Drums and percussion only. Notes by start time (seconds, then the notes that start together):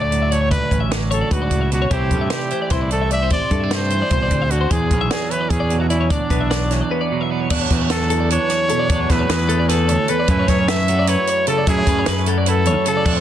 0.12 closed hi-hat
0.32 closed hi-hat
0.51 kick, closed hi-hat
0.71 kick, closed hi-hat
0.92 snare, closed hi-hat
1.11 closed hi-hat
1.31 kick, closed hi-hat
1.51 kick, closed hi-hat
1.72 closed hi-hat
1.91 kick, closed hi-hat
2.11 kick, closed hi-hat
2.30 snare, closed hi-hat
2.51 closed hi-hat
2.70 kick, snare, closed hi-hat
2.91 closed hi-hat
3.11 closed hi-hat
3.30 kick, closed hi-hat
3.51 kick, closed hi-hat
3.71 snare, closed hi-hat
3.90 closed hi-hat
4.10 kick, closed hi-hat
4.31 kick, closed hi-hat
4.51 closed hi-hat
4.71 kick, closed hi-hat
4.91 kick, closed hi-hat
5.11 snare, closed hi-hat
5.31 closed hi-hat
5.50 kick, closed hi-hat
5.70 closed hi-hat
5.90 closed hi-hat
6.10 kick, closed hi-hat
6.30 kick, closed hi-hat
6.51 snare, closed hi-hat
6.71 snare, closed hi-hat
7.50 kick, crash
7.70 kick, snare, closed hi-hat
7.90 snare, closed hi-hat
8.10 closed hi-hat
8.30 closed hi-hat
8.50 snare, closed hi-hat
8.69 closed hi-hat
8.89 kick, closed hi-hat
9.10 kick, snare, closed hi-hat
9.30 snare, closed hi-hat
9.49 closed hi-hat
9.69 snare, closed hi-hat
9.89 closed hi-hat
10.08 closed hi-hat
10.28 kick, closed hi-hat
10.48 kick, snare, closed hi-hat
10.68 snare, closed hi-hat
10.88 closed hi-hat
11.07 closed hi-hat
11.27 closed hi-hat
11.47 closed hi-hat
11.67 kick, closed hi-hat
11.87 kick, closed hi-hat
12.06 snare, closed hi-hat
12.26 closed hi-hat
12.46 closed hi-hat
12.65 closed hi-hat
12.86 closed hi-hat
13.06 kick, crash